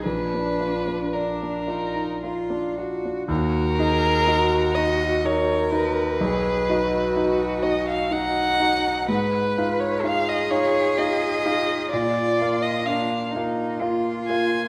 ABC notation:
X:1
M:3/4
L:1/16
Q:1/4=62
K:Ebm
V:1 name="Violin"
c4 B6 z2 | B6 e2 d2 c2- | c6 ^d f ^f4 | c3 d f e d2 e4 |
=d3 e f2 z4 a2 |]
V:2 name="Cello"
=D4 D2 E2 F2 G2 | G2 A2 G4 B4 | A2 ^F6 ^D4 | c4 A8 |
F4 =D2 E2 F4 |]
V:3 name="Grand piano"
B,,, =D F D =d D F E F D F D | E,,2 [EGe]2 [EGe]2 [EGe]2 [EGe]2 [EGe]2 | =B,,,2 [^D^F^d]2 [DFd]2 [DFd]2 [DFd]2 [DFd]2 | A,,2 [EFf]2 [EFf]2 [EFf]2 [EFf]2 [EFf]2 |
B,,2 [B,Ff]2 [B,Ff]2 [B,Ff]2 [B,Ff]2 [B,Ff]2 |]